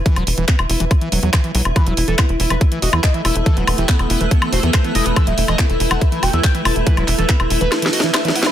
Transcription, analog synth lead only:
\new Staff \with { instrumentName = "Analog synth lead" } { \time 4/4 \key c \lydian \tempo 4 = 141 r1 | b'16 e'16 e'16 a'16 e'16 e'16 e'16 b'16 e'16 e'16 dis''16 e'16 dis''16 e'16 e''16 e'16 | a'16 b16 b16 g'16 b16 b16 b16 b'16 b16 b16 c''16 b16 c''16 b16 dis''16 b16 | e''16 e'16 e'16 dis''16 e'16 e'16 e'16 fis''16 e'16 e'16 g''16 e'16 g''16 e'16 a''16 e'16 |
b'16 e'16 e'16 a'16 e'16 e'16 e'16 b'16 e'16 e'16 dis''16 e'16 e''16 e'16 fis''16 e'16 | }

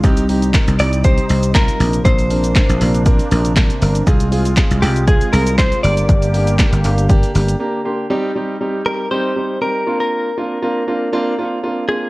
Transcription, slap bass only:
\new Staff \with { instrumentName = "Slap bass" } { \clef bass \time 4/4 \key c \minor \tempo 4 = 119 c,4~ c,16 c,16 c,4 c,4 bes,,8 | bes,,4~ bes,,16 bes,,16 bes,,4 bes,,4 g,,8 | c,4~ c,16 c,16 c,4 c,4 g,,8 | g,,4~ g,,16 g,,16 g,,4 g,,8 r4 |
r1 | r1 | }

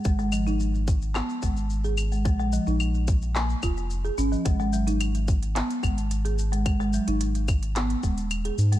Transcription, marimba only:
\new Staff \with { instrumentName = "Marimba" } { \clef bass \time 4/4 \key gis \dorian \tempo 4 = 109 gis16 gis16 eis16 dis'16 r4 b16 r16 gis16 r8 gis'16 r16 gis16 | gis16 gis16 eis16 dis'16 r4 ais16 r16 eis'16 r8 gis'16 cis'16 eis16 | gis16 gis16 fis16 dis'16 r4 b16 r16 gis16 r8 gis'16 r16 gis16 | gis16 gis16 fis16 dis'16 r4 b16 r16 gis16 r8 gis'16 r16 gis16 | }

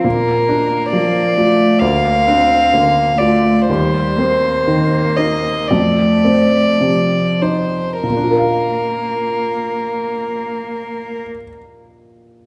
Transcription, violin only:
\new Staff \with { instrumentName = "Violin" } { \time 4/4 \key bes \major \tempo 4 = 57 bes'4 d''4 f''4. d''8 | c''4. ees''8 d''4. c''8 | bes'1 | }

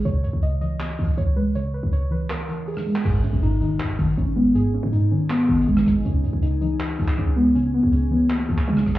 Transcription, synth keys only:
\new Staff \with { instrumentName = "Synth keys" } { \time 4/4 \key gis \minor \tempo 4 = 160 cis''8 cis''8 dis''8 dis''4. cis''8 b'8 | cis''8 b'8 cis''8 b'8 ais'4 gis'4 | gis'8 cis'8 dis'8 dis'4. cis'8 b8 | gis'8 cis'8 dis'8 cis'8 b4 gis4 |
cis'8 cis'8 dis'8 dis'4. cis'8 b8 | cis'8 b8 cis'8 b8 ais4 gis4 | }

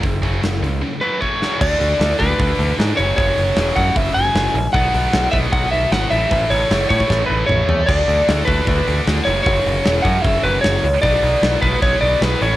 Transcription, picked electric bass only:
\new Staff \with { instrumentName = "Picked electric bass" } { \clef bass \time 4/4 \key fis \minor \tempo 4 = 153 fis,,4 fis,,8 cis,8 r2 | d,8 d,8 d,8 d,8 d,8 d,8 gis,8 fis,,8 | fis,,8 fis,,8 e,,8 fis,8 fis,,8 fis,,8 fis,,8 ais,,8 | b,,8 b,,8 b,,8 b,,8 b,,8 b,,8 gis,,8 a,,8 |
a,,8 a,,8 fis,,8 a,8 a,,8 a,,8 a,,8 e,8 | d,8 d,8 d,8 d,8 d,8 d,8 d,8 fis,,8 | fis,,8 fis,,8 e,,8 fis,8 fis,,8 fis,,8 fis,,8 cis,8 | b,,8 b,,8 b,,8 b,,8 b,,8 b,,8 b,,8 a,,8 | }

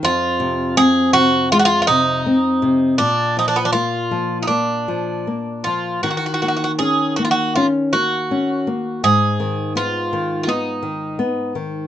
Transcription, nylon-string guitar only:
\new Staff \with { instrumentName = "Nylon-string guitar" } { \clef bass \time 4/4 \key ees \minor \tempo 4 = 81 f,8 c8 c'8 c8 aes8 c8 c'8 c8 | bes,8 f8 bes8 f8 bes8 f8 bes8 f8 | ees8 bes8 des'8 bes8 des'8 bes8 des'8 bes8 | aes,8 ees8 ces'8 ees8 ces'8 ees8 ces'8 ees8 | }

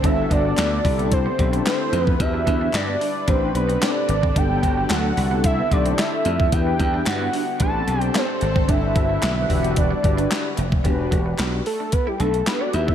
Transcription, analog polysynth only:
\new Staff \with { instrumentName = "Analog polysynth" } { \time 4/4 \key e \minor \tempo 4 = 111 <b d' fis' a'>4. <d' e' g' a'>4 <d' e' g' a'>4 r8 | <d' fis' g' b'>4. r8 <c' d' g' b'>8 <c' d' g' b'>4 r8 | <fis b d' a'>4. <d' e' g' a'>4 <d' e' g' a'>4 r8 | <d' e' g' b'>4. r8 <c' d' g' b'>8 <c' d' g' ais' c''>4 r8 |
<d' fis' a' b'>4. <d' fis' g' b'>4 <d' fis' g' b'>4 r8 | <d' fis' g' b'>4. r4. <d' fis' g' b'>8 r8 | }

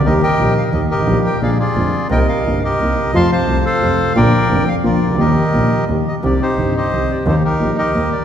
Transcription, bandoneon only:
\new Staff \with { instrumentName = "Bandoneon" } { \time 3/4 \key ees \major \tempo 4 = 175 << { ees''8 g''4 f''8 ees''8 ees''8~ | ees''8 g''8 f''8 d''4. | g''8 f''4 ees''4. | c'''8 a''4 f''4. |
g''4. f''8 d''4 | ees''2 r8 ees''8 | \key c \minor d''8 c''4 ees''4 d''8 | c''8 bes'4 ees''4 d''8 | } \\ { <g' bes'>8 <bes' ees''>4. r8 <g' bes'>8~ | <g' bes'>4 <aes' d''>8 <f' aes'>4. | <bes' ees''>8 bes'4 <g' bes'>4. | <f'' a''>8 <c'' f''>4 <a' c''>4. |
<bes' d''>4. r8 <f' bes'>4 | <g' bes'>2 r4 | g'8 <ees' g'>4 <g' c''>4. | <ees' g'>8 <ees' g'>4 <g' bes'>4. | } >> }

